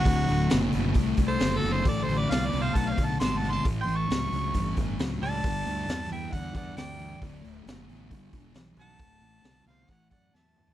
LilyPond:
<<
  \new Staff \with { instrumentName = "Harmonica" } { \time 4/4 \key d \mixolydian \tempo 4 = 134 fis'4. r8 \tuplet 3/2 { r4 c''8~ c''8 a'8 c''8 } | \tuplet 3/2 { d''8 c''8 d''8 f''8 d''8 f''8 a''8 f''8 a''8 c'''8 a''8 c'''8 } | \tuplet 3/2 { r8 c'''8 cis'''8~ } cis'''4. r4 a''8~ | a''4. g''8 fis''8 fis''8 g''4 |
r2. r8 a''8~ | a''4. f''8 fis''8 fis''8 a''4 | }
  \new Staff \with { instrumentName = "Lead electric guitar" } { \time 4/4 \key d \mixolydian d'4. r8 \tuplet 3/2 { r4 a'8~ a'8 fis'8 a'8 } | \tuplet 3/2 { a'8 a'8 b'8 d''8 b'8 c''8 fis''8 c''8 fis''8 a''8 fis''8 a''8 } | \tuplet 3/2 { r8 g''8 a''8~ } a''4. r4 d''8~ | d''4. e''8 d''8 d''8 d''4~ |
d''4 r2 r8 fis''8~ | fis''4. c''8 cis''8 d''8 e''4 | }
  \new Staff \with { instrumentName = "Distorted electric guitar" } { \clef bass \time 4/4 \key d \mixolydian <d, a,>8 <d, a,>8 <d, b,>8 <d, b,>8 <d, a,>8 <d, a,>8 <d, b,>8 <d, b,>8 | <d, a,>8 <d, a,>8 <d, b,>8 <d, b,>8 <d, a,>8 <d, a,>8 <d, b,>8 <d, b,>8 | <a, e>8 <a, e>8 <a, fis>8 <a, fis>8 <a, e>8 <a, e>8 <a, fis>8 <a, fis>8 | <g, d>8 <g, d>8 <g, e>8 <g, e>8 <g, d>8 <g, d>8 <g, e>8 <g, e>8 |
<d, a,>8 <d, a,>8 <d, b,>8 <d, b,>8 <g, d>8 <g, d>8 <g, e>8 <g, e>8 | <d, a,>8 <d, a,>8 <d, b,>8 <d, b,>8 <a, e>8 <a, e>8 <a, fis>8 <a, fis>8 | }
  \new Staff \with { instrumentName = "Fingered electric bass" } { \clef bass \time 4/4 \key d \mixolydian d,,8 d,,8 fis,,8 fis,,8 c,8 c,8 fis,,8 fis,,8 | a,,8 a,,8 c,8 c,8 b,,8 b,,8 gis,,4 | a,,8 a,,8 cis,8 cis,8 g,,8 g,,8 cis,8 cis,8 | g,,8 d,8 e,8 e,8 e,8 e,8 d,4 |
d,,8 d,,8 fis,,8 a,,8 g,,8 e,,8 b,,8 b,,8 | r8 a,,8 c,8 c,8 a,,8 fis,8 e,4 | }
  \new DrumStaff \with { instrumentName = "Drums" } \drummode { \time 4/4 <hho bd>8 hho8 <hho sn>8 hho8 <hho bd>8 <hho bd>8 <hho sn>8 hho8 | <hho bd>8 hho8 <hho sn>8 hho8 <hho bd>8 <hho bd>8 <hho sn>8 hho8 | <hho bd>8 hho8 <hho sn>8 hho8 <hho bd>8 <hho bd>8 <hho sn>8 hho8 | <hho bd>8 hho8 <hho sn>8 hho8 <hho bd>8 <hho bd>8 <hho sn>8 hho8 |
<hho bd>8 hho8 <hho sn>8 hho8 <hho bd>8 <hho bd>8 <hho sn>8 hho8 | <hho bd>8 hho8 <hho sn>8 hho8 <hho bd>8 <hho bd>8 sn8 toml16 tomfh16 | }
>>